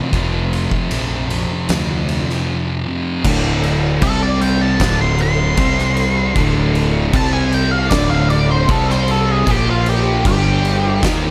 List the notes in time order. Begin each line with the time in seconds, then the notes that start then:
Already playing: F2 C3
0.11 F1 F2 C3, kick, ride
0.15 F3
0.53 ride
0.71 kick
0.91 A#1, ride
1.29 F2 C3 F3, ride
1.69 D2, snare, ride
2.09 ride
2.30 snare
2.85 F2 C3 F3
3.24 D1 D2 A2 D3, kick, crash
3.63 crash
4.02 C2 C3 G3 C4 A4, kick, crash
4.23 D5
4.41 G5, crash
4.61 A5
4.80 D1 D2 A2 D3, kick, snare, crash
5.01 C6
5.18 C6, crash
5.57 C2 C3 G3 C4, kick, crash
5.79 snare
5.97 crash
6.36 D1 D2 A2 D3, kick, crash
6.75 crash
7.13 C2 C3 G3 C4 A5, kick, crash
7.33 G#5
7.52 G5, crash
7.71 F5
7.90 D1 D2 A2 D3 D5, kick, snare, crash
8.10 F5
8.30 D5, crash
8.51 C5
8.68 C2 C3 G3 C4 A4, kick, crash
8.90 C5, snare
9.08 A4, crash
9.31 G#4
9.46 A#1 A#2 F3 A#3, kick, crash
9.51 G4
9.70 F4
9.86 G4, crash
10.25 G1 G2 D3 G3 G4, kick, crash
10.65 crash
11.02 D#2 D#3 A#3 D#4, kick, snare, crash